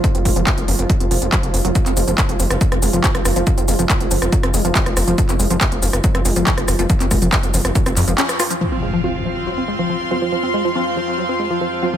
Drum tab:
HH |xxoxxxoxxxoxxxox|xxoxxxoxxxoxxxox|xxoxxxoxxxoxxxox|xxoxxxoxxxoxxxox|
SH |----------------|xxxxx-xxx-xxx-xx|xxxxx-xxx-xxx-xx|xxxxx-xxx-xxx-xx|
CP |----x-------x---|-x--x-------x---|----x-------x---|-x--x-------x---|
SD |----------------|-------r-r---rr-|-------r-r---rr-|-------r-r---rr-|
BD |o-o-o---o---o---|o---o---o---o---|o---o---o---o---|o---o---o---o---|

HH |xxoxxxoxxxoxxxox|----------------|----------------|
SH |xxxxxxxxxxxxxxxx|----------------|----------------|
CP |-x--x-----x-x---|----------------|----------------|
SD |--r----r-r---rr-|----------------|----------------|
BD |o-o-o---o-------|----------------|----------------|